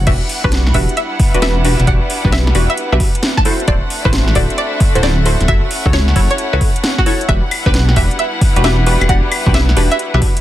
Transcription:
Already playing: string section F#4 F#5
0.06 detuned saw bass E1, violin section G3 B3 D4 F#5, synth stab D4 F#4 G4 B4, string section E4, synth pluck E5, kick, closed hi-hat, crash
0.29 open hi-hat
0.44 detuned saw bass B1, synth stab D4 F#4 G4 B4, synth pluck B4, kick
0.52 snare, closed hi-hat
0.63 string section B4, snare
0.74 detuned saw bass E1, synth stab D4 F#4 G4 B4, synth pluck E5, kick, open hi-hat
0.89 closed hi-hat
0.97 synth pluck E5, closed hi-hat
1.20 kick, open hi-hat
1.34 detuned saw bass E1, synth stab D4 F#4 G4 B4, closed hi-hat
1.42 synth stab D4 F#4 G4 B4, synth pluck E5, snare, closed hi-hat
1.65 synth stab D4 F#4 G4 B4, open hi-hat
1.80 detuned saw bass E1, snare, closed hi-hat
1.87 detuned saw bass E1, synth stab D4 F#4 G4 D5, synth pluck F#5, kick, closed hi-hat
2.10 open hi-hat
2.25 detuned saw bass B1, synth stab D4 F#4 G4 B4, kick, snare
2.32 synth pluck E5, snare, closed hi-hat
2.47 snare
2.55 detuned saw bass E1, synth stab D4 F#4 G4 B4, open hi-hat
2.70 synth pluck E5, closed hi-hat
2.78 closed hi-hat
2.92 detuned saw bass B1, synth stab D4 F#4 G4 B4, synth pluck E5
3.00 kick, open hi-hat
3.15 closed hi-hat
3.23 snare, closed hi-hat
3.37 synth pluck A5, kick, snare
3.45 violin section A3 C4 E4, string section D4, synth stab E4 F#4 A4 C5, open hi-hat
3.60 closed hi-hat
3.68 detuned saw bass D1, synth stab E4 F#4 A4 C5, synth pluck D5, kick, closed hi-hat
3.86 string section A4 E5
3.90 open hi-hat
4.05 detuned saw bass A1, synth stab E4 F#4 A4 C5, synth pluck B4, kick
4.13 snare, closed hi-hat
4.28 snare
4.35 detuned saw bass D1, synth stab E4 F#4 A4 C5, synth pluck D5, kick, open hi-hat
4.50 closed hi-hat
4.58 synth pluck D5, closed hi-hat
4.80 kick, open hi-hat
4.95 detuned saw bass D1, synth stab E4 F#4 A4 C5, closed hi-hat
5.03 synth stab E4 F#4 A4 C5, synth pluck D5, snare, closed hi-hat
5.26 synth stab E4 F#4 A4 C5, open hi-hat
5.41 detuned saw bass D1, snare, closed hi-hat
5.48 detuned saw bass F#1, violin section A3 C#4 E4, synth stab E4 F#4 A4 E5, synth pluck E5, kick, closed hi-hat
5.71 open hi-hat
5.86 detuned saw bass C#2, synth stab E4 F#4 A4 C#5, kick, snare
5.90 string section C#5, synth pluck C#5, snare, closed hi-hat
6.02 string section F#5
6.08 snare
6.16 detuned saw bass F#1, synth stab E4 F#4 A4 C#5, kick, open hi-hat
6.31 synth pluck C#5, closed hi-hat
6.38 closed hi-hat
6.53 detuned saw bass C#2, synth stab E4 F#4 A4 C#5, synth pluck B4
6.61 kick, open hi-hat
6.76 closed hi-hat
6.84 snare, closed hi-hat
6.98 synth pluck F#4, kick, snare
7.06 synth stab E4 F#4 A4 C#5, open hi-hat
7.21 closed hi-hat
7.29 detuned saw bass E1, violin section G3 B3 D4, synth stab D4 F#4 G4 B4, string section E4, synth pluck E5, kick, closed hi-hat
7.51 string section B4, open hi-hat, claves
7.66 detuned saw bass B1, synth stab D4 F#4 G4 B4, synth pluck B4, kick
7.74 snare, closed hi-hat
7.89 snare
7.96 detuned saw bass E1, synth stab D4 F#4 G4 B4, synth pluck E5, kick, open hi-hat
8.11 closed hi-hat
8.19 synth pluck E5, closed hi-hat
8.41 kick, open hi-hat
8.56 detuned saw bass E1, synth stab D4 F#4 G4 B4, closed hi-hat
8.64 synth stab D4 F#4 G4 B4, synth pluck E5, snare, closed hi-hat
8.87 synth stab D4 F#4 G4 B4, open hi-hat
9.01 detuned saw bass E1, snare, closed hi-hat, claves
9.09 detuned saw bass E1, synth stab D4 F#4 G4 D5, synth pluck F#5, kick, closed hi-hat
9.32 open hi-hat, claves
9.46 detuned saw bass B1, synth stab D4 F#4 G4 B4, kick, snare
9.54 synth pluck E5, snare, closed hi-hat
9.69 snare
9.77 detuned saw bass E1, synth stab D4 F#4 G4 B4, open hi-hat
9.92 synth pluck E5, closed hi-hat
9.99 closed hi-hat
10.14 detuned saw bass B1, synth stab D4 F#4 G4 B4, synth pluck E5
10.22 kick, open hi-hat
10.37 closed hi-hat

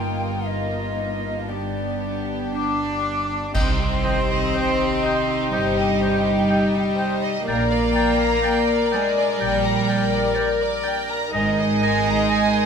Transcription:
Already playing: double bass section G1, harp G2 A#3 D#4, cello section G2, viola section A#3, violin section D#4 F4, flute section G5
0.45 harp F4, flute section D#5
0.96 harp D#4
1.49 harp G2, viola section B3, violin section D4 G4, flute section D5
2.01 harp B3
2.52 cello section D4, flute section D6
3.04 harp D4
3.54 double bass section C2, harp C3, cello section C4, violin section D#4 G4, viola section D#4, french horn section G4 D#5, clarinet D#5, oboe G5, flute section C6, concert bass drum, crash
3.80 violin section G4
4.04 harp D#3, violin section C5, clarinet D#5, oboe G5
4.31 violin section D#5
4.54 violin section C5, clarinet D#5, oboe G5
4.81 violin section G4
5.02 violin section D#4, harp D#4, clarinet D#5, oboe G5
5.29 violin section G4
5.52 double bass section G1, cello section G3, harp C4, violin section C5, clarinet D#5, oboe G5, flute section G5
5.78 violin section D#5
6.02 violin section C5, clarinet D#5, oboe G5
6.27 violin section G4
6.50 violin section D#4, clarinet D#5, oboe G5
6.75 violin section G4
6.98 harp D#4, violin section C5, clarinet D#5, oboe G5
7.22 violin section D#5
7.46 double bass section A#1, harp A#2, cello section A#3, violin section A#4 D5, viola section A#4, french horn section A#4 D5, clarinet D5, oboe G5, flute section A#5
7.70 violin section D5
7.95 harp A#3, clarinet D5, violin section G5, oboe G5
8.21 violin section A#5
8.43 harp A#4, clarinet D5, oboe G5, violin section G5
8.70 violin section D5
8.92 cello section G#3, harp D4, violin section A#4, clarinet D5, oboe G5, flute section G#5
9.18 violin section D5
9.40 double bass section A#1, harp A#2, cello section G3, clarinet D5, oboe G5, violin section G5, flute section G5
9.65 violin section A#5
9.89 harp A#3, clarinet D5, violin section G5, oboe G5
10.13 violin section D5
10.34 harp G4, violin section A#4, clarinet D5, oboe G5
10.61 violin section D5
10.83 harp D4, clarinet D5, oboe G5, violin section G5
11.11 violin section A#5
11.33 double bass section G#1, harp G#2, cello section G#3, viola section D#4, french horn section A#4 D#5, violin section A#4 D#5, clarinet D#5, flute section G#5, oboe A#5
11.60 violin section D#5
11.81 harp A#3, clarinet D#5, violin section G#5, oboe A#5
12.07 violin section A#5
12.29 harp G#4, clarinet D#5, violin section G#5, oboe A#5
12.55 violin section D#5

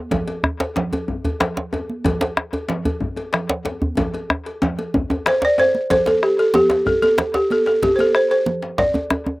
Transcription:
0.11 bombo rim, bombo low, cowbell, djembe slap, djembe tone, djembe bass, low conga
0.28 cowbell, djembe tone, high conga
0.44 bombo rim, djembe bass
0.60 cowbell, djembe slap
0.76 djembe slap, djembe tone, low conga
0.93 cowbell, djembe tone, high conga
1.08 bombo low, djembe bass
1.24 cowbell, djembe slap, djembe tone, djembe bass
1.40 bombo rim, cowbell, djembe slap, low conga
1.57 djembe slap, high conga
1.73 bombo rim, cowbell, djembe slap, djembe tone
1.90 high conga
2.04 bombo rim, bombo low, cowbell, djembe slap, djembe bass, low conga
2.21 cowbell, djembe slap, djembe tone
2.37 bombo rim, djembe slap
2.53 cowbell, djembe tone
2.68 djembe slap, djembe tone, low conga
2.85 cowbell, high conga, djembe bass
3.00 bombo low, djembe bass
3.16 cowbell, djembe slap, djembe tone
3.33 bombo rim, cowbell, djembe slap, low conga
3.49 djembe slap
3.65 bombo rim, cowbell, djembe slap, djembe tone
3.82 high conga, djembe bass
3.97 bombo low, cowbell, djembe slap, djembe tone, high conga, djembe bass, low conga
4.14 bombo rim, cowbell, djembe slap, djembe tone
4.29 bombo rim, djembe slap, djembe tone, high conga
4.46 cowbell, djembe slap
4.62 djembe slap, djembe tone, low conga
4.79 cowbell, high conga
4.94 bombo low, djembe tone, djembe bass
5.10 cowbell, djembe tone, high conga
5.26 balafon C5, bombo rim, cowbell, djembe slap, low conga
5.42 balafon D5, bombo rim, djembe slap
5.58 balafon C5, cowbell, djembe tone
5.75 bombo rim, high conga
5.90 balafon C5, bombo low, cowbell, djembe slap, high conga, djembe bass, low conga
6.06 balafon A4, cowbell, djembe slap, djembe tone, high conga
6.22 balafon G4, bombo rim, djembe slap
6.38 balafon A4, cowbell, djembe slap
6.54 balafon G4, djembe slap, high conga, low conga
6.70 cowbell, djembe slap
6.86 balafon A4, bombo low, high conga, djembe bass
7.02 balafon A4, cowbell, djembe tone, high conga
7.18 bombo rim, cowbell, djembe slap, high conga, low conga
7.34 balafon G4, djembe slap
7.50 balafon A4, cowbell, djembe slap, high conga
7.66 balafon A4, djembe slap
7.82 balafon G4, bombo low, cowbell, high conga, djembe bass, low conga
7.96 balafon C5, cowbell, djembe slap, djembe tone, high conga
8.00 balafon A4
8.14 balafon C5, bombo rim, djembe slap
8.30 balafon C5, cowbell, djembe slap
8.46 high conga, low conga
8.62 djembe slap
8.78 balafon D5, bombo low, djembe slap, high conga, djembe bass
8.94 cowbell, djembe tone, high conga
9.10 bombo rim, cowbell, high conga, djembe tone, low conga
9.26 djembe slap, djembe tone

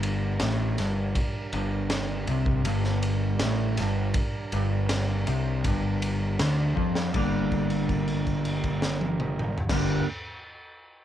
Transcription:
Already playing: picked electric bass G1, clean electric guitar G2, transistor combo organ G3 D4 A#4
0.03 ride
0.40 picked electric bass A1, clean electric guitar A2, snare, ride
0.78 picked electric bass G1, clean electric guitar G2, snare, ride
1.15 kick, ride
1.53 picked electric bass G1, clean electric guitar G2, ride
1.90 snare, ride
2.27 picked electric bass C2, clean electric guitar C3, ride
2.46 kick
2.64 picked electric bass G1, clean electric guitar G2, ride
2.84 snare
3.03 ride
3.39 picked electric bass A1, clean electric guitar A2, snare, ride
3.77 picked electric bass G1, clean electric guitar G2, snare, ride
4.14 kick, ride
4.52 picked electric bass G1, clean electric guitar G2, ride
4.89 snare, ride
5.27 picked electric bass C2, clean electric guitar C3, ride
5.64 picked electric bass G1, clean electric guitar G2, kick, ride
6.02 ride
6.39 picked electric bass D2, clean electric guitar D3, snare, ride
6.76 picked electric bass F2, clean electric guitar F3, kick
6.95 snare
7.13 picked electric bass G1, clean electric guitar G2 D3 G3 A#3 D4, kick, crash
7.17 transistor combo organ G3 A#3 D4 A#4
7.52 kick, crash
7.70 crash
7.89 kick, crash
8.08 crash
8.27 kick, crash
8.45 crash
8.64 kick, crash
8.82 snare
9.01 high tom
9.20 mid tom
9.39 mid tom
9.58 floor tom
9.69 picked electric bass G1, clean electric guitar G2 D3 G3 A#3, transistor combo organ G3 A#3 D4 A#4, kick, snare, crash
9.73 clean electric guitar D4

